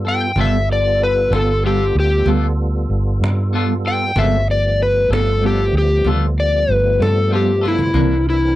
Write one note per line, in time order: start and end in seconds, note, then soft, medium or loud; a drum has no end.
0.00 0.32 G2 medium
0.00 0.32 G3 medium
0.00 0.32 B3 medium
0.00 0.32 F4 medium
0.00 0.32 A4 medium
0.04 0.25 B3 soft
0.04 0.25 F4 medium
0.04 0.24 A4 medium
0.04 0.37 G5 loud
0.04 cajon slap soft
0.36 1.27 G1 medium
0.36 4.12 G3 medium
0.36 0.56 G3 medium
0.36 4.12 B3 medium
0.36 0.56 B3 medium
0.36 4.12 F4 medium
0.36 0.56 F4 medium
0.36 4.12 A4 medium
0.36 0.57 A4 medium
0.36 cajon bass medium
0.41 0.69 E5 medium
0.73 1.01 D5 medium
1.03 1.32 B4 loud
1.31 1.90 G1 loud
1.31 1.52 F4 medium
1.31 1.51 A4 medium
1.31 cajon slap medium
1.35 1.52 B3 soft
1.35 1.64 A4 medium
1.64 1.82 G3 medium
1.64 1.83 B3 medium
1.64 1.83 F4 medium
1.64 1.95 G4 medium
1.64 1.84 A4 medium
1.95 2.24 D2 loud
2.00 2.28 G4 medium
2.26 2.85 D2 medium
2.26 2.45 G3 medium
2.26 2.46 B3 medium
2.26 2.46 F4 medium
2.26 2.46 A4 medium
2.26 cajon bass medium
2.26 cajon slap soft
2.57 cajon slap soft
2.89 3.18 G1 medium
2.89 cajon slap soft
3.21 4.12 G2 medium
3.21 cajon slap loud
3.53 3.72 G3 medium
3.53 3.72 B3 medium
3.53 3.73 F4 medium
3.53 3.73 A4 medium
3.53 cajon slap soft
3.84 4.05 B3 soft
3.84 4.04 F4 medium
3.84 4.04 A4 medium
3.84 4.17 G5 loud
3.84 cajon slap soft
4.15 5.07 G1 medium
4.15 4.35 G3 medium
4.15 4.47 G#3 medium
4.15 4.47 A#3 medium
4.15 4.35 B3 medium
4.15 4.47 C4 medium
4.15 4.36 F4 medium
4.15 4.47 F#4 medium
4.15 4.36 A4 medium
4.15 4.48 E5 medium
4.15 cajon bass loud
4.48 7.92 F3 medium
4.48 7.92 G3 medium
4.48 7.92 A3 medium
4.48 7.92 B3 medium
4.48 4.80 D5 medium
4.48 cajon slap soft
4.79 5.11 B4 medium
4.79 cajon slap soft
5.10 5.69 G1 loud
5.10 5.30 F4 soft
5.10 5.30 A4 soft
5.10 5.43 A4 medium
5.10 cajon slap loud
5.14 5.31 B3 soft
5.42 5.61 G3 medium
5.42 5.62 B3 medium
5.42 5.62 F4 medium
5.42 5.63 A4 medium
5.46 5.75 G4 medium
5.73 6.02 D2 loud
5.78 6.07 G4 loud
6.05 6.64 D2 medium
6.05 6.24 G3 medium
6.05 6.25 B3 medium
6.05 6.25 F4 medium
6.05 6.25 A4 medium
6.05 cajon bass medium
6.36 6.72 D5 medium
6.36 cajon slap soft
6.68 6.98 G1 medium
6.68 7.01 B4 medium
6.68 cajon slap soft
7.01 7.91 G2 medium
7.01 7.32 A4 medium
7.01 cajon slap medium
7.30 7.50 G3 soft
7.30 7.51 B3 medium
7.30 7.51 F4 medium
7.30 7.52 A4 medium
7.35 7.64 G4 medium
7.61 7.83 B3 soft
7.61 7.82 F4 medium
7.61 7.81 A4 medium
7.61 cajon slap soft
7.65 8.27 E4 medium
7.65 cajon slap medium
7.79 cajon bass medium
7.93 8.55 C2 loud
7.93 8.13 C3 medium
7.93 8.13 E3 medium
7.93 8.55 E3 medium
7.93 8.14 A#3 medium
7.93 8.55 C4 medium
7.93 8.55 D4 medium
7.93 8.14 D4 medium
7.93 8.55 A#4 medium
7.93 cajon bass medium
8.25 cajon slap soft
8.30 8.55 E4 medium